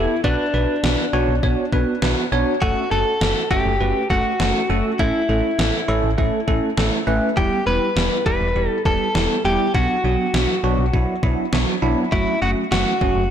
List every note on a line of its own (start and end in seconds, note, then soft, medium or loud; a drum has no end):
0.00 0.16 B3 medium
0.00 0.16 E4 medium
0.00 0.20 E4 medium
0.00 0.16 G4 medium
0.00 0.16 A4 loud
0.24 0.37 B1 loud
0.24 0.45 B3 medium
0.24 0.45 D4 medium
0.24 1.98 D4 medium
0.24 0.45 F#4 medium
0.24 0.45 B4 loud
0.24 kick loud
0.54 0.66 B1 loud
0.54 0.75 B3 medium
0.54 0.75 D4 medium
0.54 0.75 F#4 medium
0.54 0.75 B4 medium
0.84 0.96 B1 loud
0.84 1.05 B3 medium
0.84 1.05 D4 medium
0.84 1.05 F#4 medium
0.84 1.05 B4 medium
0.84 snare loud
1.13 1.26 B1 medium
1.13 1.34 B3 loud
1.13 1.34 D4 loud
1.13 1.34 F#4 loud
1.13 1.34 C#5 loud
1.28 1.41 B1 medium
1.43 1.56 B1 loud
1.43 1.64 B3 medium
1.43 1.64 D4 medium
1.43 1.64 F#4 medium
1.43 1.64 C#5 medium
1.43 kick medium
1.73 1.85 B1 loud
1.73 1.94 B3 medium
1.73 1.94 D4 medium
1.73 1.94 F#4 medium
1.73 1.94 B4 loud
1.73 kick medium
2.02 2.15 B1 loud
2.02 2.24 B3 medium
2.02 2.24 D4 medium
2.02 2.24 F#4 medium
2.02 2.24 B4 medium
2.02 snare loud
2.32 2.45 B1 loud
2.32 2.53 B3 loud
2.32 2.53 D4 loud
2.32 2.53 F#4 loud
2.32 2.53 C#5 loud
2.62 2.74 F#1 loud
2.62 2.83 A3 medium
2.62 2.83 C#4 medium
2.62 2.91 F#4 loud
2.62 2.83 F#4 medium
2.62 2.83 A4 loud
2.62 kick loud
2.91 3.04 F#1 loud
2.91 3.13 A3 medium
2.91 3.13 C#4 medium
2.91 3.13 F#4 medium
2.91 3.50 A4 loud
2.91 3.13 A4 medium
3.21 3.34 F#1 loud
3.21 3.42 A3 medium
3.21 3.42 C#4 medium
3.21 3.42 F#4 medium
3.21 3.42 A4 medium
3.21 snare loud
3.51 3.63 F#1 medium
3.51 3.72 A3 medium
3.51 3.72 C#4 medium
3.51 3.72 F#4 medium
3.51 4.10 G4 loud
3.51 3.72 A4 loud
3.51 kick medium
3.66 3.78 F#1 loud
3.80 3.93 F#1 loud
3.80 4.02 A3 medium
3.80 4.02 C#4 medium
3.80 4.02 F#4 medium
3.80 4.02 B4 medium
4.10 4.23 F#1 loud
4.10 4.31 A3 medium
4.10 4.31 C#4 medium
4.10 4.31 F#4 medium
4.10 5.02 F#4 medium
4.10 4.31 A4 medium
4.10 kick medium
4.40 4.53 F#1 loud
4.40 4.61 A3 medium
4.40 4.61 C#4 medium
4.40 4.61 F#4 medium
4.40 4.61 A4 medium
4.40 snare loud
4.70 4.82 F#1 loud
4.70 4.91 A3 medium
4.70 4.91 C#4 medium
4.70 4.91 F#4 medium
4.70 4.91 A4 loud
4.99 5.12 A1 loud
4.99 5.21 A3 medium
4.99 5.21 C#4 medium
4.99 6.74 E4 medium
4.99 5.21 E4 medium
4.99 5.21 A4 loud
4.99 kick loud
5.29 5.42 A1 loud
5.29 5.50 A3 medium
5.29 5.50 C#4 medium
5.29 5.50 E4 medium
5.29 5.50 A4 medium
5.59 5.71 A1 loud
5.59 5.80 A3 medium
5.59 5.80 C#4 medium
5.59 5.80 E4 medium
5.59 5.80 A4 medium
5.59 snare loud
5.88 6.01 A1 medium
5.88 6.10 A3 loud
5.88 6.10 C#4 loud
5.88 6.10 E4 loud
5.88 6.10 A4 loud
6.03 6.16 A1 loud
6.18 6.31 A1 loud
6.18 6.39 A3 medium
6.18 6.39 C#4 medium
6.18 6.39 E4 medium
6.18 6.39 A4 medium
6.18 kick medium
6.48 6.60 A1 loud
6.48 6.69 A3 medium
6.48 6.69 C#4 medium
6.48 6.69 E4 medium
6.48 6.69 A4 medium
6.48 kick medium
6.77 6.90 A1 loud
6.77 6.99 A3 medium
6.77 6.99 C#4 medium
6.77 6.99 E4 medium
6.77 6.99 A4 medium
6.77 snare loud
7.07 7.20 A1 loud
7.07 7.28 A3 loud
7.07 7.28 C#4 medium
7.07 7.28 E4 medium
7.07 7.28 B4 loud
7.37 7.50 E1 loud
7.37 7.58 G3 medium
7.37 7.58 B3 medium
7.37 7.58 E4 medium
7.37 7.58 G4 loud
7.37 7.66 G4 medium
7.37 kick loud
7.67 7.79 E1 medium
7.67 7.88 G3 medium
7.67 7.88 B3 medium
7.67 7.88 E4 medium
7.67 7.88 G4 medium
7.67 8.25 B4 loud
7.96 8.09 E1 loud
7.96 8.18 G3 medium
7.96 8.18 B3 medium
7.96 8.17 E4 medium
7.96 8.17 G4 medium
7.96 snare loud
8.26 8.39 E1 medium
8.26 8.47 G3 medium
8.26 8.47 B3 medium
8.26 8.47 E4 medium
8.26 8.47 G4 loud
8.26 8.69 B4 loud
8.26 kick medium
8.41 8.53 E1 loud
8.56 8.68 E1 loud
8.56 8.77 G3 medium
8.56 8.77 B3 medium
8.56 8.77 E4 medium
8.56 8.77 G4 medium
8.69 8.82 A4 loud
8.85 8.98 E1 loud
8.85 9.07 G3 medium
8.85 9.07 B3 medium
8.85 9.07 E4 medium
8.85 9.07 G4 medium
8.85 9.45 A4 loud
8.85 kick medium
9.15 9.28 E1 loud
9.15 9.36 G3 medium
9.15 9.36 B3 medium
9.15 9.36 E4 medium
9.15 9.36 G4 medium
9.15 snare loud
9.45 9.57 E1 medium
9.45 9.66 G3 medium
9.45 9.66 B3 medium
9.45 9.66 E4 medium
9.45 9.66 G4 loud
9.45 9.74 G4 medium
9.75 9.87 B1 loud
9.75 9.96 F#3 medium
9.75 9.96 B3 medium
9.75 9.96 D4 medium
9.75 11.49 F#4 medium
9.75 9.96 F#4 loud
9.75 kick loud
10.04 10.17 B1 loud
10.04 10.26 F#3 medium
10.04 10.26 B3 medium
10.04 10.26 D4 medium
10.04 10.26 F#4 medium
10.34 10.47 B1 loud
10.34 10.55 F#3 medium
10.34 10.55 B3 medium
10.34 10.55 D4 medium
10.34 10.55 F#4 medium
10.34 snare loud
10.64 10.76 B1 medium
10.64 10.85 F#3 loud
10.64 10.85 B3 loud
10.64 10.85 D4 loud
10.64 10.85 F#4 loud
10.78 10.91 B1 loud
10.94 11.06 B1 loud
10.94 11.15 F#3 medium
10.94 11.15 B3 medium
10.94 11.15 D4 medium
10.94 11.15 E4 medium
10.94 kick medium
11.23 11.36 B1 loud
11.23 11.44 F#3 medium
11.23 11.44 B3 medium
11.23 11.44 D4 medium
11.23 11.44 E4 loud
11.23 kick medium
11.53 11.65 B1 loud
11.53 11.74 F#3 medium
11.53 11.74 B3 medium
11.53 11.74 D4 medium
11.53 11.74 F#4 medium
11.53 snare loud
11.82 11.95 B1 loud
11.82 12.04 F#3 loud
11.82 12.04 B3 loud
11.82 12.04 D4 loud
11.82 12.04 E4 loud
12.12 12.25 F#1 loud
12.12 12.33 F#3 medium
12.12 12.33 A3 medium
12.12 12.33 C#4 medium
12.12 12.42 E4 medium
12.12 12.33 F#4 loud
12.12 kick loud
12.42 12.55 F#1 medium
12.42 12.63 F#3 medium
12.42 12.63 A3 medium
12.42 12.63 C#4 medium
12.42 12.63 F#4 medium
12.42 12.50 F#4 medium
12.72 12.84 F#1 loud
12.72 12.93 F#3 medium
12.72 12.93 A3 medium
12.72 12.93 C#4 medium
12.72 12.93 F#4 medium
12.72 13.30 F#4 medium
12.72 snare loud
13.01 13.14 F#1 medium
13.01 13.22 F#3 medium
13.01 13.22 A3 medium
13.01 13.22 C#4 medium
13.01 13.22 F#4 loud
13.01 kick medium
13.16 13.29 F#1 loud